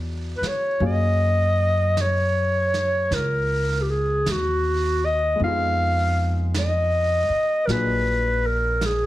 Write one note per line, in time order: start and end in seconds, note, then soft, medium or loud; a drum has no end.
0.00 0.38 E2 medium
0.00 0.79 F#3 soft
0.00 0.81 B3 soft
0.00 0.81 D4 soft
0.00 0.82 E4 soft
0.00 0.81 G#4 soft
0.37 0.48 B4 soft
0.37 muted upright bass stroke soft
0.43 snare soft
0.47 0.84 C#5 medium
0.80 3.07 F#2 medium
0.80 5.40 F#3 soft
0.80 5.40 A#3 soft
0.80 5.40 C#4 soft
0.80 5.41 G#4 soft
0.80 5.41 F5 soft
0.80 brush sweep soft
0.86 2.03 D#5 medium
1.97 brush sweep soft
1.97 snare soft
1.97 hi-hat pedal soft
2.01 3.16 C#5 medium
2.74 snare soft
3.11 4.22 C#2 medium
3.11 3.83 A#4 medium
3.11 brush sweep soft
3.11 snare soft
3.82 3.92 G4 soft
3.90 4.33 G#4 medium
4.26 5.36 D#2 medium
4.26 brush sweep soft
4.26 snare soft
4.26 hi-hat pedal soft
4.31 5.07 F#4 medium
5.05 5.42 D#5 medium
5.36 7.66 G#3 soft
5.36 7.68 B3 soft
5.40 7.25 F2 medium
5.40 7.69 D#4 soft
5.40 brush sweep soft
5.44 7.68 F4 soft
5.44 7.69 G#4 medium
5.44 6.34 F5 medium
6.55 7.68 D#5 medium
6.55 brush sweep soft
6.55 snare soft
6.55 hi-hat pedal medium
7.29 muted upright bass stroke soft
7.67 9.06 A#1 medium
7.67 9.06 F#3 soft
7.67 9.06 A#3 soft
7.67 9.06 D4 soft
7.67 9.06 F4 soft
7.67 9.06 G#4 medium
7.67 7.74 A#4 medium
7.67 brush sweep soft
7.67 snare soft
7.73 8.48 B4 medium
8.47 8.87 A#4 medium
8.81 brush sweep soft
8.81 snare soft
8.81 hi-hat pedal soft
8.86 9.06 G#4 medium